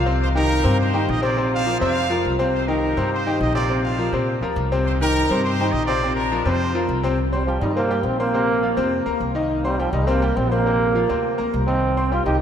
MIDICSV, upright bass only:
0, 0, Header, 1, 2, 480
1, 0, Start_track
1, 0, Key_signature, -3, "minor"
1, 0, Tempo, 290276
1, 349, Time_signature, 4, 2, 24, 8
1, 20529, End_track
2, 0, Start_track
2, 0, Title_t, "Upright bass"
2, 0, Program_c, 0, 32
2, 0, Note_on_c, 0, 36, 107
2, 975, Note_off_c, 0, 36, 0
2, 1068, Note_on_c, 0, 43, 103
2, 1739, Note_off_c, 0, 43, 0
2, 1793, Note_on_c, 0, 34, 105
2, 2903, Note_off_c, 0, 34, 0
2, 2998, Note_on_c, 0, 41, 99
2, 3665, Note_off_c, 0, 41, 0
2, 3717, Note_on_c, 0, 36, 98
2, 4825, Note_off_c, 0, 36, 0
2, 4911, Note_on_c, 0, 43, 91
2, 5582, Note_off_c, 0, 43, 0
2, 5629, Note_on_c, 0, 34, 100
2, 6741, Note_off_c, 0, 34, 0
2, 6820, Note_on_c, 0, 46, 94
2, 7273, Note_off_c, 0, 46, 0
2, 7295, Note_on_c, 0, 38, 69
2, 7526, Note_off_c, 0, 38, 0
2, 7543, Note_on_c, 0, 36, 107
2, 8658, Note_off_c, 0, 36, 0
2, 8750, Note_on_c, 0, 43, 107
2, 9421, Note_off_c, 0, 43, 0
2, 9469, Note_on_c, 0, 34, 99
2, 10580, Note_off_c, 0, 34, 0
2, 10670, Note_on_c, 0, 41, 98
2, 11341, Note_off_c, 0, 41, 0
2, 11387, Note_on_c, 0, 36, 105
2, 12499, Note_off_c, 0, 36, 0
2, 12589, Note_on_c, 0, 43, 98
2, 13260, Note_off_c, 0, 43, 0
2, 13284, Note_on_c, 0, 34, 97
2, 14408, Note_off_c, 0, 34, 0
2, 14502, Note_on_c, 0, 41, 97
2, 14954, Note_off_c, 0, 41, 0
2, 14986, Note_on_c, 0, 38, 77
2, 15212, Note_off_c, 0, 38, 0
2, 15220, Note_on_c, 0, 36, 93
2, 16337, Note_off_c, 0, 36, 0
2, 16414, Note_on_c, 0, 36, 99
2, 17092, Note_off_c, 0, 36, 0
2, 17143, Note_on_c, 0, 34, 109
2, 18258, Note_off_c, 0, 34, 0
2, 18348, Note_on_c, 0, 38, 97
2, 18797, Note_off_c, 0, 38, 0
2, 18844, Note_on_c, 0, 38, 71
2, 19062, Note_off_c, 0, 38, 0
2, 19076, Note_on_c, 0, 36, 104
2, 20184, Note_off_c, 0, 36, 0
2, 20267, Note_on_c, 0, 36, 99
2, 20529, Note_off_c, 0, 36, 0
2, 20529, End_track
0, 0, End_of_file